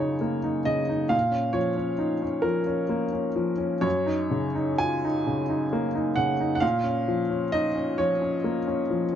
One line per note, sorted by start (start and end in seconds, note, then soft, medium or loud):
0.00 1.09 F#2 soft
0.00 0.66 C#3 soft
0.00 0.44 D#4 soft
0.00 1.16 F4 soft
0.00 0.68 C#5 medium
0.21 0.58 A#3 soft
0.44 0.81 D#4 soft
0.65 1.03 C#3 soft
0.65 1.12 D#5 medium
0.89 1.13 D#4 soft
1.09 3.78 A#2 medium
1.09 1.56 F5 medium
1.31 1.69 C#4 soft
1.53 1.91 F3 soft
1.53 2.44 C#5 medium
1.77 2.14 C#4 soft
1.98 2.23 D#4 soft
2.22 2.59 C#4 soft
2.42 2.81 F3 soft
2.42 3.82 A#4 medium
2.67 3.04 C#4 soft
2.89 3.27 A#3 soft
3.12 3.50 C#4 soft
3.36 3.74 F3 soft
3.58 3.83 C#4 soft
3.81 6.56 F#2 medium
3.81 4.79 C#5 medium
4.06 4.46 D#4 soft
4.31 4.70 C#3 soft
4.55 4.94 D#4 soft
4.78 5.04 F4 soft
4.78 6.16 G#5 medium
5.05 5.41 D#4 soft
5.27 5.63 C#3 soft
5.50 5.86 D#4 soft
5.73 6.09 A#3 soft
5.95 6.31 D#4 soft
6.16 6.53 C#3 soft
6.16 6.54 F#5 medium
6.41 6.62 D#4 soft
6.55 6.62 F#5 medium
6.60 9.15 A#2 medium
6.60 7.51 F5 medium
6.84 7.20 C#4 soft
7.08 7.44 F3 soft
7.30 7.66 C#4 soft
7.52 7.76 D#4 soft
7.52 7.98 D#5 medium
7.75 8.12 C#4 soft
7.98 8.35 F3 soft
7.98 9.15 C#5 medium
8.21 8.58 C#4 soft
8.44 8.81 A#3 soft
8.67 9.04 C#4 soft
8.90 9.15 F3 soft